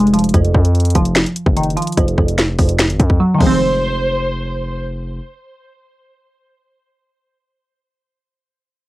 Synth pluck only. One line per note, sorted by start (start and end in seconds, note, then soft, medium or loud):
0.00 0.33 F2 medium
0.00 0.34 G#3 loud
0.14 0.34 F3 medium
0.34 0.53 F2 loud
0.55 1.57 F2 medium
0.95 1.76 F3 medium
1.57 2.59 D#3 medium
1.77 2.79 F3 medium
1.98 2.17 F2 loud
2.18 2.57 F2 medium
2.59 3.40 F2 medium
3.20 3.40 F#3 medium
3.34 6.71 D#3 medium
3.38 6.75 F3 medium
3.38 6.79 G#3 medium
3.46 6.83 C4 medium